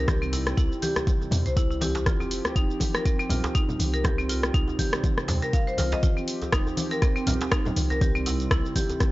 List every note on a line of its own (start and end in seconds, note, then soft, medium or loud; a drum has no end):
0.00 0.54 C2 loud
0.00 2.02 C4 medium
0.08 2.04 C3 medium
0.08 2.04 G3 medium
0.08 0.20 G4 medium
0.08 kick loud
0.08 cross-stick medium
0.08 closed hi-hat medium
0.08 high conga loud
0.08 shaker soft
0.22 0.32 C4 loud
0.22 shaker soft
0.33 0.40 E4 medium
0.33 open hi-hat medium
0.33 djembe tone medium
0.33 shaker medium
0.47 cross-stick medium
0.47 closed hi-hat soft
0.47 shaker soft
0.57 0.69 C2 medium
0.57 0.70 E4 loud
0.57 kick loud
0.57 closed hi-hat medium
0.57 djembe tone medium
0.57 shaker medium
0.72 shaker soft
0.82 0.95 G4 loud
0.82 open hi-hat medium
0.82 high conga medium
0.82 shaker medium
0.96 cross-stick medium
0.96 closed hi-hat soft
0.96 djembe tone medium
0.96 shaker soft
1.07 kick loud
1.07 closed hi-hat medium
1.07 high conga medium
1.07 shaker medium
1.21 djembe tone medium
1.21 shaker soft
1.31 1.43 E2 loud
1.31 open hi-hat medium
1.31 low conga loud
1.31 shaker medium
1.46 2.08 C2 medium
1.46 1.56 C5 medium
1.46 closed hi-hat soft
1.46 shaker soft
1.57 1.69 E4 loud
1.57 kick loud
1.57 closed hi-hat medium
1.57 djembe tone medium
1.57 shaker medium
1.71 1.81 E4 medium
1.71 shaker soft
1.81 1.94 G4 loud
1.81 open hi-hat medium
1.81 djembe slap medium
1.81 high conga loud
1.81 djembe tone medium
1.81 shaker medium
1.95 closed hi-hat soft
1.95 djembe slap loud
1.95 shaker soft
2.06 2.40 F1 medium
2.06 4.03 F3 medium
2.06 4.03 C4 medium
2.06 2.19 F4 medium
2.06 4.03 G4 medium
2.06 kick loud
2.06 cross-stick medium
2.06 closed hi-hat medium
2.06 high conga loud
2.06 shaker soft
2.20 2.30 C4 medium
2.20 djembe tone medium
2.20 shaker soft
2.31 open hi-hat medium
2.31 shaker medium
2.45 cross-stick medium
2.45 closed hi-hat soft
2.45 djembe tone medium
2.45 shaker soft
2.56 2.67 F1 loud
2.56 2.68 D#4 loud
2.56 kick loud
2.56 closed hi-hat medium
2.56 shaker medium
2.71 shaker soft
2.80 kick medium
2.80 open hi-hat medium
2.80 high conga loud
2.80 djembe tone medium
2.80 shaker medium
2.95 3.04 A#4 loud
2.95 cross-stick medium
2.95 closed hi-hat soft
2.95 shaker soft
3.05 3.18 C4 medium
3.05 kick loud
3.05 closed hi-hat medium
3.05 djembe tone medium
3.05 shaker soft
3.19 3.29 C4 loud
3.19 shaker soft
3.29 3.41 A#1 medium
3.29 3.38 F4 medium
3.29 open hi-hat medium
3.29 low conga medium
3.29 shaker medium
3.44 closed hi-hat soft
3.44 djembe slap loud
3.44 djembe tone medium
3.44 shaker soft
3.55 3.68 D#4 loud
3.55 kick loud
3.55 closed hi-hat medium
3.55 shaker medium
3.69 djembe tone medium
3.69 low conga medium
3.69 shaker soft
3.79 4.51 C2 loud
3.79 open hi-hat medium
3.79 high conga loud
3.79 shaker medium
3.94 4.04 A#4 loud
3.94 closed hi-hat soft
3.94 shaker soft
4.04 6.01 C3 medium
4.04 6.01 G3 medium
4.04 6.01 C4 medium
4.04 4.17 G4 medium
4.04 kick loud
4.04 cross-stick medium
4.04 closed hi-hat medium
4.04 high conga loud
4.04 djembe tone medium
4.04 low conga medium
4.04 shaker soft
4.19 4.28 C4 loud
4.19 shaker soft
4.29 4.37 F4 medium
4.29 open hi-hat loud
4.29 djembe tone medium
4.29 shaker medium
4.43 cross-stick loud
4.43 closed hi-hat soft
4.43 shaker soft
4.54 4.65 C2 loud
4.54 4.67 D#4 loud
4.54 kick loud
4.54 closed hi-hat medium
4.54 shaker medium
4.68 djembe tone medium
4.68 shaker soft
4.79 4.92 G4 loud
4.79 kick medium
4.79 open hi-hat medium
4.79 high conga loud
4.79 shaker medium
4.93 cross-stick loud
4.93 closed hi-hat soft
4.93 djembe tone medium
4.93 shaker soft
5.04 kick loud
5.04 closed hi-hat medium
5.04 high conga loud
5.04 shaker soft
5.18 cross-stick medium
5.18 shaker soft
5.28 5.40 D#2 medium
5.28 open hi-hat medium
5.28 djembe slap medium
5.28 high conga medium
5.28 djembe tone medium
5.28 low conga loud
5.28 shaker medium
5.42 5.52 A#4 loud
5.42 closed hi-hat soft
5.42 shaker soft
5.53 5.61 F5 loud
5.53 kick loud
5.53 closed hi-hat medium
5.53 djembe tone medium
5.53 shaker medium
5.67 5.77 C5 loud
5.67 shaker soft
5.78 5.98 C2 medium
5.78 5.91 F4 medium
5.78 open hi-hat medium
5.78 djembe slap medium
5.78 high conga loud
5.78 shaker medium
5.92 6.02 D#5 loud
5.92 closed hi-hat soft
5.92 djembe slap loud
5.92 djembe tone medium
5.92 shaker soft
6.03 7.99 F3 medium
6.03 7.99 C4 medium
6.03 6.15 F4 medium
6.03 7.99 G4 loud
6.03 kick loud
6.03 closed hi-hat medium
6.03 djembe tone medium
6.03 high conga loud
6.03 shaker medium
6.17 6.27 C4 medium
6.17 shaker soft
6.28 open hi-hat medium
6.28 shaker medium
6.42 closed hi-hat soft
6.42 djembe tone medium
6.42 shaker soft
6.52 6.64 F1 loud
6.52 6.65 D#4 loud
6.52 kick loud
6.52 cross-stick loud
6.52 closed hi-hat medium
6.52 shaker medium
6.67 djembe tone medium
6.67 shaker soft
6.77 open hi-hat medium
6.77 high conga loud
6.77 shaker loud
6.91 7.01 A#4 loud
6.91 closed hi-hat soft
6.91 shaker soft
7.02 7.15 C4 medium
7.02 kick loud
7.02 cross-stick medium
7.02 closed hi-hat medium
7.02 djembe tone medium
7.02 shaker medium
7.16 7.26 C4 loud
7.16 shaker soft
7.26 7.38 A#1 medium
7.26 7.34 F4 medium
7.26 open hi-hat medium
7.26 high conga medium
7.26 djembe tone medium
7.26 low conga loud
7.26 shaker medium
7.34 closed hi-hat medium
7.41 closed hi-hat soft
7.41 djembe slap loud
7.41 shaker soft
7.52 7.64 D#4 loud
7.52 kick loud
7.52 cross-stick loud
7.52 closed hi-hat medium
7.52 shaker medium
7.65 djembe tone loud
7.65 low conga loud
7.65 shaker soft
7.76 8.47 C2 loud
7.76 open hi-hat medium
7.76 high conga loud
7.76 shaker loud
7.90 8.00 A#4 loud
7.90 closed hi-hat soft
7.90 djembe tone medium
7.90 shaker soft
8.01 9.12 C3 medium
8.01 9.12 G3 medium
8.01 9.12 C4 medium
8.01 8.14 G4 medium
8.01 kick loud
8.01 closed hi-hat medium
8.01 high conga loud
8.01 shaker medium
8.15 8.25 C4 loud
8.15 shaker soft
8.26 8.34 E4 medium
8.26 open hi-hat loud
8.26 djembe tone loud
8.26 shaker loud
8.40 closed hi-hat soft
8.40 shaker soft
8.51 8.62 C2 loud
8.51 8.63 E4 loud
8.51 kick loud
8.51 cross-stick loud
8.51 closed hi-hat medium
8.51 djembe tone medium
8.51 shaker medium
8.66 shaker soft
8.76 8.88 G4 loud
8.76 kick medium
8.76 open hi-hat medium
8.76 high conga loud
8.76 shaker loud
8.90 closed hi-hat soft
8.90 djembe tone medium
8.90 shaker soft
9.00 kick loud
9.00 cross-stick medium
9.00 closed hi-hat medium
9.00 high conga loud
9.00 shaker medium